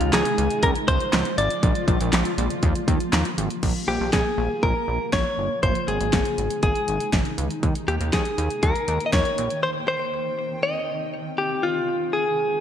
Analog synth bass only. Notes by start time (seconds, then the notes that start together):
0.01 C#2
0.13 C#2
0.38 C#2
0.63 C#2
0.88 C#2
1.13 C#2
1.38 G#1
1.63 A#1
1.88 A#1
2.00 A#1
2.13 A#1
2.38 A#1
2.63 D#2
2.88 D#2
3.13 D#2
3.38 G#1
3.63 A#1
3.88 A#1
4.00 A#1
4.13 A#1
4.38 A#1
4.63 A#1
4.88 A#1
5.13 A#1
5.38 G1
5.63 G#1
5.88 G#1
6.01 G#1
6.13 G#1
6.38 G#1
6.63 G#1
6.88 G#1
7.13 G#1
7.38 C#2
7.63 D#2
7.88 D#2
8.00 D#2
8.13 D#2
8.38 D#2
8.63 D#2
8.88 D#2
9.13 D#2
9.38 A#1